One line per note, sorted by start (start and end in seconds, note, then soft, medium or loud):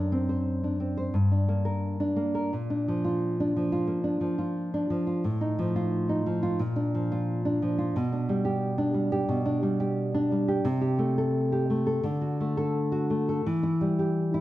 0.00 1.11 F#2 medium
0.00 0.62 D4 soft
0.12 0.79 C4 soft
0.29 0.96 C5 soft
0.64 1.15 D4 soft
0.80 1.14 C4 soft
0.97 1.14 C5 soft
1.14 2.49 G2 medium
1.32 1.99 D4 soft
1.48 2.15 A#3 soft
1.65 2.33 A#4 soft
2.00 2.53 D4 soft
2.16 2.52 A#3 soft
2.35 2.53 A#4 soft
2.53 3.85 A#2 medium
2.70 3.39 D4 soft
2.88 3.55 F3 soft
3.04 3.71 F4 soft
3.40 4.03 D4 soft
3.56 4.20 F3 soft
3.72 4.37 F4 soft
3.87 4.89 A#3 soft
4.04 4.73 D4 soft
4.21 4.89 F3 soft
4.38 5.06 F4 soft
4.74 5.24 D4 soft
4.90 5.24 F3 soft
5.07 5.24 F4 soft
5.24 6.56 A2 medium
5.41 6.08 D#4 soft
5.59 6.25 F3 medium
5.76 6.42 F4 medium
6.09 6.60 D#4 soft
6.26 6.60 F3 soft
6.43 6.60 F4 medium
6.59 7.91 A#2 medium
6.76 7.44 D4 soft
6.95 7.61 F3 soft
7.12 7.77 F4 medium
7.45 7.96 D4 medium
7.62 7.96 F3 soft
7.78 7.95 F4 soft
7.96 9.25 B2 medium
8.12 8.77 D4 medium
8.29 8.93 G3 medium
8.45 9.11 G4 medium
8.78 9.44 D4 medium
8.94 9.61 G3 soft
9.12 9.79 G4 medium
9.29 10.60 B2 medium
9.45 10.13 D4 soft
9.63 10.30 G3 soft
9.80 10.47 G4 medium
10.14 10.65 D4 medium
10.32 10.65 G3 medium
10.48 10.65 G4 soft
10.65 12.00 C3 medium
10.81 11.17 G4 medium
10.99 11.69 A3 medium
11.18 11.85 A4 medium
11.52 12.05 G4 soft
11.70 12.05 A3 medium
11.87 12.04 A4 medium
12.03 13.41 D3 medium
12.21 12.91 F#4 soft
12.40 13.09 A3 soft
12.57 13.28 A4 medium
12.92 13.45 F#4 medium
13.10 13.46 A3 soft
13.29 13.46 A4 soft
13.46 14.41 E3 medium
13.63 14.33 E4 soft
13.81 14.41 G3 soft
13.99 14.41 G4 soft
14.34 14.41 E4 medium